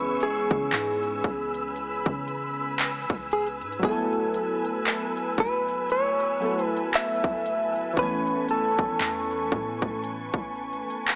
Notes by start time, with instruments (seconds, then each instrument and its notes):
Already playing: 808-style bass C#2, synth keys E3 G#3 B3 C#4 G#4, clean electric guitar B4, string section B4 G#5 C#6 E6
0.20 clean electric guitar G#4, closed hi-hat
0.50 808-style bass C#3, kick, closed hi-hat
0.72 808-style bass G#2, clap, closed hi-hat
1.03 closed hi-hat
1.24 808-style bass C#2, string section B5, kick, closed hi-hat
1.54 closed hi-hat
1.76 closed hi-hat
2.06 808-style bass C#3, kick, closed hi-hat
2.28 closed hi-hat
2.79 clap, closed hi-hat
3.10 808-style bass C#2, kick, closed hi-hat
3.32 clean electric guitar G#4, closed hi-hat
3.47 closed hi-hat
3.61 808-style bass G#2, closed hi-hat
3.72 closed hi-hat
3.79 808-style bass F#1, synth keys F#3 G#3, string section A4, kick, closed hi-hat
3.84 synth keys B3 E4, clean electric guitar A4
3.88 synth keys A3 G#5
4.13 closed hi-hat
4.34 closed hi-hat
4.65 closed hi-hat
4.87 clap, closed hi-hat
5.17 closed hi-hat
5.38 808-style bass F#1, clean electric guitar B4, kick, closed hi-hat
5.69 closed hi-hat
5.90 clean electric guitar C#5, closed hi-hat
6.20 closed hi-hat
6.40 synth keys F#3 A3 B3 E4, closed hi-hat
6.45 synth keys A4
6.59 closed hi-hat
6.66 clean electric guitar B4
6.77 closed hi-hat
6.93 clean electric guitar E5, clap, closed hi-hat
7.24 808-style bass F#1, kick, closed hi-hat
7.46 closed hi-hat
7.76 closed hi-hat
7.93 808-style bass A1, synth keys E3 A3, string section C#6, kick, closed hi-hat
7.98 synth keys B3 C#4, clean electric guitar B4
8.03 synth keys G#5
8.27 closed hi-hat
8.49 clean electric guitar A4, closed hi-hat
8.79 808-style bass G#1, kick, closed hi-hat
9.00 808-style bass E2, clap, closed hi-hat
9.31 closed hi-hat
9.52 808-style bass A2, kick, closed hi-hat
9.82 kick, closed hi-hat
10.04 closed hi-hat
10.34 808-style bass A1, kick, closed hi-hat
10.56 closed hi-hat
10.73 closed hi-hat
10.90 closed hi-hat
11.07 clap, closed hi-hat